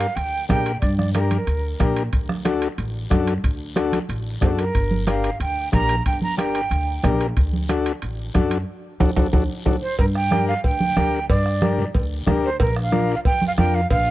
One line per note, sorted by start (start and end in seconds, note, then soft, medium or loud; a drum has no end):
0.00 0.17 F5 medium
0.00 high timbale medium
0.00 short guiro medium
0.15 0.43 D2 medium
0.15 0.48 G5 loud
0.15 high conga soft
0.15 high timbale medium
0.15 long guiro medium
0.48 0.76 A#2 medium
0.48 0.72 D4 medium
0.48 0.72 G4 medium
0.48 0.72 A#4 medium
0.48 0.79 G5 loud
0.48 bombo low medium
0.48 bombo rim medium
0.48 high conga medium
0.48 high timbale medium
0.48 low timbale medium
0.48 short guiro medium
0.66 high timbale medium
0.66 short guiro medium
0.81 1.35 G2 medium
0.81 0.97 D5 medium
0.81 bombo low medium
0.81 high conga soft
0.81 high timbale medium
0.81 long guiro medium
0.97 1.13 D5 medium
0.97 bombo rim medium
0.97 high conga medium
1.14 1.37 D4 medium
1.14 1.38 G4 medium
1.14 1.92 A#4 medium
1.14 1.38 A#4 medium
1.14 bombo rim medium
1.14 high conga medium
1.14 high timbale medium
1.14 short guiro medium
1.31 high conga medium
1.31 high timbale medium
1.31 short guiro medium
1.47 1.73 D2 medium
1.47 high conga soft
1.47 high timbale medium
1.47 long guiro medium
1.80 2.06 A#2 medium
1.80 2.03 D4 medium
1.80 2.03 G4 medium
1.80 2.03 A#4 medium
1.80 bombo low medium
1.80 bombo rim medium
1.80 high conga medium
1.80 high timbale medium
1.80 short guiro medium
1.96 high timbale medium
1.96 short guiro medium
2.13 2.65 D2 medium
2.13 bombo low medium
2.13 high conga soft
2.13 high timbale medium
2.13 long guiro medium
2.29 bombo rim medium
2.29 high conga medium
2.45 2.68 D4 medium
2.45 2.68 F#4 medium
2.45 2.68 A4 medium
2.45 bombo rim medium
2.45 high conga medium
2.45 high timbale medium
2.45 short guiro medium
2.62 high timbale medium
2.62 short guiro medium
2.78 3.04 A1 medium
2.78 high conga soft
2.78 high timbale medium
2.78 long guiro medium
3.10 3.37 F#2 loud
3.10 3.33 D4 medium
3.10 3.34 F#4 medium
3.10 3.34 A4 medium
3.10 bombo low medium
3.10 bombo rim medium
3.10 high conga medium
3.10 high timbale medium
3.10 short guiro medium
3.27 high timbale medium
3.27 short guiro medium
3.44 3.96 D2 medium
3.44 bombo low medium
3.44 high conga soft
3.44 high timbale medium
3.44 long guiro medium
3.76 3.99 D4 medium
3.76 3.99 F#4 medium
3.76 3.99 A4 medium
3.76 bombo rim medium
3.76 high conga loud
3.76 high timbale medium
3.76 short guiro medium
3.93 high conga medium
3.93 high timbale medium
3.93 short guiro medium
4.09 4.35 A1 medium
4.09 high conga soft
4.09 high timbale medium
4.09 long guiro medium
4.41 4.68 F#2 medium
4.41 4.64 D4 medium
4.41 4.65 F#4 medium
4.41 4.65 A4 medium
4.41 4.49 C5 medium
4.41 bombo low medium
4.41 bombo rim medium
4.41 high conga medium
4.41 high timbale medium
4.41 low timbale medium
4.41 short guiro medium
4.58 5.04 A#4 medium
4.58 high timbale medium
4.58 short guiro medium
4.75 5.27 G1 medium
4.75 bombo low medium
4.75 high conga soft
4.75 high timbale medium
4.75 long guiro medium
4.91 high conga medium
5.07 5.30 D4 medium
5.07 5.30 G4 medium
5.07 5.31 A#4 medium
5.07 5.38 F5 medium
5.07 bombo rim medium
5.07 high conga loud
5.07 high timbale medium
5.07 short guiro medium
5.24 high timbale medium
5.24 short guiro medium
5.40 5.66 D2 medium
5.40 5.71 G5 loud
5.40 high conga soft
5.40 high timbale medium
5.40 long guiro medium
5.72 5.99 A#1 loud
5.72 5.95 D4 medium
5.72 5.96 G4 medium
5.72 5.96 A#4 medium
5.72 6.03 A#5 loud
5.72 bombo low medium
5.72 bombo rim medium
5.72 high conga medium
5.72 high timbale medium
5.72 short guiro medium
5.89 high timbale medium
5.89 short guiro medium
6.06 6.58 G1 medium
6.06 6.21 G5 medium
6.06 bombo low medium
6.06 high conga soft
6.06 high timbale medium
6.06 long guiro medium
6.22 6.38 A#5 medium
6.22 high conga medium
6.37 6.61 D4 medium
6.37 6.61 G4 medium
6.37 6.61 A#4 medium
6.37 7.16 G5 medium
6.37 bombo rim medium
6.37 high conga medium
6.37 high timbale medium
6.37 short guiro medium
6.55 high timbale medium
6.55 short guiro medium
6.71 6.97 D2 medium
6.71 high conga soft
6.71 high timbale medium
6.71 long guiro medium
7.03 7.30 A#1 loud
7.03 7.27 D4 medium
7.03 7.27 G4 medium
7.03 7.27 A#4 medium
7.03 bombo low medium
7.03 bombo rim medium
7.03 high conga medium
7.03 high timbale medium
7.03 low timbale medium
7.03 short guiro medium
7.20 high timbale medium
7.20 short guiro medium
7.36 7.89 D2 medium
7.36 bombo low medium
7.36 high conga soft
7.36 high timbale medium
7.36 long guiro medium
7.53 high conga medium
7.69 7.92 D4 medium
7.69 7.92 F#4 medium
7.69 7.93 A4 medium
7.69 bombo rim medium
7.69 high conga medium
7.69 high timbale medium
7.69 short guiro medium
7.86 high timbale medium
7.86 short guiro medium
8.02 8.29 A1 medium
8.02 high conga soft
8.02 high timbale medium
8.02 long guiro medium
8.34 8.61 F#2 loud
8.34 8.58 D4 medium
8.34 8.58 F#4 medium
8.34 8.58 A4 medium
8.34 bombo low medium
8.34 bombo rim medium
8.34 high conga medium
8.34 high timbale medium
8.34 short guiro medium
8.51 high timbale medium
8.51 short guiro medium
9.00 9.13 D2 medium
9.00 9.11 D4 medium
9.00 9.11 F#4 medium
9.00 9.11 A4 medium
9.00 bombo low loud
9.00 high conga medium
9.00 high timbale loud
9.00 long guiro medium
9.16 9.29 D2 medium
9.16 9.27 D4 medium
9.16 9.27 F#4 medium
9.16 9.27 A4 medium
9.16 bombo low medium
9.16 high conga medium
9.16 high timbale loud
9.16 long guiro medium
9.33 9.45 D2 medium
9.33 9.44 D4 medium
9.33 9.44 F#4 medium
9.33 9.44 A4 medium
9.33 bombo low medium
9.33 high conga medium
9.33 high timbale medium
9.33 long guiro medium
9.65 9.78 D2 medium
9.65 9.76 D4 medium
9.65 9.76 F#4 medium
9.65 9.76 A4 medium
9.65 bombo low loud
9.65 high conga medium
9.65 high timbale medium
9.65 long guiro medium
9.82 9.98 C5 medium
9.99 10.51 G2 medium
9.99 10.05 A#4 medium
9.99 bombo low medium
9.99 cowbell medium
9.99 long guiro medium
10.15 10.46 G5 loud
10.15 bombo rim medium
10.31 10.54 D4 medium
10.31 10.54 G4 medium
10.31 10.54 A#4 medium
10.31 bombo rim medium
10.31 high conga medium
10.31 short guiro medium
10.48 10.63 F5 loud
10.48 short guiro medium
10.64 10.90 D2 medium
10.64 11.26 G5 loud
10.64 bombo low medium
10.64 cowbell medium
10.64 long guiro medium
10.80 high conga medium
10.96 11.23 D2 loud
10.96 11.19 D4 medium
10.96 11.20 G4 medium
10.96 11.20 A#4 medium
10.96 bombo rim medium
10.96 high conga medium
10.96 short guiro medium
11.13 short guiro medium
11.29 11.82 G2 medium
11.29 11.91 D5 medium
11.29 bombo low medium
11.29 cowbell loud
11.29 long guiro medium
11.46 bombo rim medium
11.62 11.85 D4 medium
11.62 11.85 G4 medium
11.62 11.85 A#4 medium
11.62 bombo rim medium
11.62 high conga medium
11.62 short guiro medium
11.78 low conga medium
11.78 short guiro medium
11.95 12.21 D2 medium
11.95 bombo low medium
11.95 cowbell medium
11.95 long guiro medium
12.27 12.53 D2 medium
12.27 12.50 D4 medium
12.27 12.50 G4 medium
12.27 12.50 A#4 medium
12.27 bombo rim medium
12.27 high conga medium
12.27 low conga medium
12.27 short guiro medium
12.44 12.59 C5 medium
12.44 short guiro medium
12.60 13.12 A#1 loud
12.60 12.76 A#4 medium
12.60 bombo low medium
12.60 cowbell loud
12.60 long guiro medium
12.76 bombo rim medium
12.83 13.13 F5 medium
12.92 13.15 D4 medium
12.92 13.15 F4 medium
12.92 13.15 A#4 medium
12.92 bombo rim medium
12.92 high conga medium
12.92 short guiro medium
13.09 short guiro medium
13.15 13.20 F5 medium
13.25 13.51 F2 medium
13.25 13.46 G5 loud
13.25 bombo low medium
13.25 cowbell medium
13.25 long guiro medium
13.42 high conga medium
13.47 13.52 F5 loud
13.58 13.84 F2 medium
13.58 13.81 D4 medium
13.58 13.81 F4 medium
13.58 13.81 A#4 medium
13.58 13.76 G5 loud
13.58 bombo rim medium
13.58 high conga medium
13.58 short guiro medium
13.74 13.90 F5 medium
13.74 short guiro medium
13.90 14.11 A#1 loud
13.90 14.11 F5 loud
13.90 bombo low medium
13.90 cowbell loud
13.90 long guiro medium